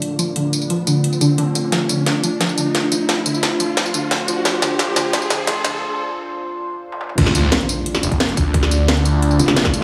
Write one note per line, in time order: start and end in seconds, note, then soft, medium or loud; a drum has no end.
0.00 7.14 A3 medium
0.00 7.14 D4 medium
0.00 7.14 F4 medium
0.00 1.68 D5 medium
0.00 closed hi-hat medium
0.00 riser medium
0.19 0.35 F3 medium
0.19 closed hi-hat medium
0.19 tambourine medium
0.36 0.52 D3 medium
0.36 closed hi-hat medium
0.53 closed hi-hat medium
0.53 tambourine medium
0.61 tambourine soft
0.70 0.86 F3 medium
0.70 closed hi-hat medium
0.87 1.03 D3 medium
0.87 closed hi-hat medium
0.87 tambourine medium
1.04 closed hi-hat medium
1.13 tambourine soft
1.21 1.28 D3 loud
1.21 closed hi-hat medium
1.21 tambourine medium
1.38 1.50 D3 loud
1.38 closed hi-hat medium
1.55 1.71 D3 medium
1.55 closed hi-hat medium
1.55 tambourine medium
1.72 1.89 F3 medium
1.72 7.14 C5 medium
1.72 snare soft
1.72 closed hi-hat medium
1.89 2.06 D3 medium
1.89 closed hi-hat medium
1.89 tambourine medium
2.06 snare medium
2.06 closed hi-hat medium
2.23 2.39 F3 medium
2.23 closed hi-hat medium
2.23 tambourine medium
2.40 2.57 F3 medium
2.40 snare medium
2.40 closed hi-hat medium
2.49 tambourine soft
2.58 2.74 D3 medium
2.58 closed hi-hat medium
2.58 tambourine medium
2.75 snare medium
2.75 closed hi-hat medium
2.92 3.07 F3 medium
2.92 closed hi-hat medium
2.92 tambourine medium
3.09 3.25 F3 medium
3.09 snare medium
3.09 closed hi-hat loud
3.26 3.42 D3 medium
3.26 closed hi-hat medium
3.26 tambourine medium
3.34 tambourine soft
3.43 snare medium
3.43 closed hi-hat medium
3.60 3.76 F3 medium
3.60 closed hi-hat medium
3.60 tambourine medium
3.77 3.93 F3 medium
3.77 snare medium
3.77 closed hi-hat medium
3.86 tambourine soft
3.94 4.10 D3 medium
3.94 closed hi-hat medium
3.94 tambourine medium
4.11 snare medium
4.11 closed hi-hat medium
4.28 4.44 F3 medium
4.28 closed hi-hat medium
4.28 tambourine medium
4.45 4.61 F3 medium
4.45 snare medium
4.45 closed hi-hat loud
4.62 4.78 D3 medium
4.62 snare medium
4.62 closed hi-hat medium
4.62 tambourine medium
4.79 4.95 F3 medium
4.79 snare medium
4.79 closed hi-hat medium
4.96 5.12 D3 medium
4.96 snare medium
4.96 closed hi-hat medium
4.96 tambourine medium
5.13 5.29 F3 medium
5.13 snare medium
5.13 closed hi-hat loud
5.22 tambourine soft
5.30 5.46 D3 medium
5.30 snare medium
5.30 closed hi-hat medium
5.30 tambourine medium
5.47 5.64 F3 medium
5.47 snare medium
5.47 closed hi-hat medium
5.64 5.80 D3 medium
5.64 snare loud
5.64 closed hi-hat medium
5.64 tambourine medium
6.92 high tom medium
7.01 mid tom medium
7.09 mid tom medium
7.18 7.51 D2 loud
7.18 9.84 A3 medium
7.18 9.84 D4 medium
7.18 9.84 F4 medium
7.18 9.84 D5 medium
7.18 kick loud
7.18 closed hi-hat loud
7.18 crash loud
7.18 impact medium
7.26 snare soft
7.35 closed hi-hat medium
7.35 tambourine medium
7.52 snare loud
7.52 closed hi-hat loud
7.61 closed hi-hat soft
7.69 closed hi-hat medium
7.69 tambourine medium
7.86 closed hi-hat loud
7.95 snare soft
7.95 tambourine soft
8.03 8.36 F1 loud
8.03 closed hi-hat medium
8.03 tambourine medium
8.12 kick medium
8.12 closed hi-hat soft
8.20 snare loud
8.20 closed hi-hat loud
8.29 closed hi-hat soft
8.37 8.87 D2 loud
8.37 kick loud
8.37 closed hi-hat medium
8.37 tambourine medium
8.54 kick loud
8.54 closed hi-hat loud
8.63 snare soft
8.71 closed hi-hat medium
8.71 tambourine medium
8.88 9.38 D2 loud
8.88 snare loud
8.88 closed hi-hat loud
8.97 closed hi-hat soft
9.05 closed hi-hat medium
9.05 tambourine medium
9.22 closed hi-hat loud
9.31 tambourine soft
9.39 9.84 F1 loud
9.39 closed hi-hat medium
9.39 tambourine medium
9.48 snare soft
9.48 closed hi-hat soft
9.56 snare loud
9.56 closed hi-hat medium
9.65 kick loud
9.65 snare medium
9.65 closed hi-hat soft
9.74 closed hi-hat medium
9.74 tambourine medium